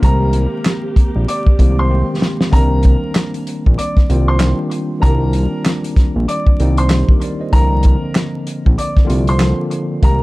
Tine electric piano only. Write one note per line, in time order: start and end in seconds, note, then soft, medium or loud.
0.01 0.85 D#3 medium
0.01 0.85 G#3 medium
0.01 0.85 A#3 medium
0.01 0.86 C4 medium
0.01 0.86 G4 loud
1.58 1.81 D#3 medium
1.58 1.81 G#3 medium
1.58 1.81 A#3 medium
1.58 1.82 C4 medium
1.58 1.82 G4 medium
1.88 2.31 D#3 medium
1.88 2.31 G#3 medium
1.88 2.32 A#3 medium
1.88 2.32 C4 medium
1.88 2.32 G4 medium
2.50 2.59 D3 medium
2.50 3.34 G3 medium
2.50 3.35 A#3 medium
2.50 3.35 C4 medium
2.50 3.35 D4 loud
2.56 3.37 D#3 medium
4.09 4.31 D#3 medium
4.09 4.31 G3 medium
4.09 4.32 A#3 medium
4.09 4.32 C4 medium
4.09 4.32 F4 loud
4.39 4.81 D#3 medium
4.39 4.82 G3 medium
4.39 4.82 A#3 medium
4.39 4.82 C4 medium
4.39 4.83 D4 medium
5.00 5.84 D#3 medium
5.00 5.84 G3 medium
5.00 5.85 A#3 medium
5.00 5.85 C4 medium
5.00 5.85 D4 loud
6.59 6.81 D#3 loud
6.59 6.82 G3 medium
6.59 6.82 A#3 medium
6.59 6.82 C4 medium
6.59 6.83 D#4 loud
6.91 7.09 D#4 medium
6.91 7.08 G4 medium
7.10 7.22 G4 medium
7.10 7.21 A#4 medium
7.23 7.40 A#4 medium
7.23 7.40 D5 medium
7.41 7.70 C5 medium
7.41 7.70 D#5 medium
7.51 8.34 D3 medium
7.51 8.35 F3 medium
7.51 8.35 A#3 medium
7.51 8.36 C4 medium
7.51 8.36 D4 loud
9.05 9.29 D3 loud
9.05 9.29 F3 medium
9.05 9.30 A#3 medium
9.05 9.30 C4 medium
9.05 9.30 F4 loud
9.38 9.81 D3 medium
9.38 9.81 F3 medium
9.38 9.82 A#3 medium
9.38 9.82 C4 medium
9.38 9.82 D4 medium
10.01 10.23 D#3 medium
10.01 10.23 G#3 medium
10.01 10.23 A#3 medium
10.01 10.23 C4 medium
10.01 10.23 G4 loud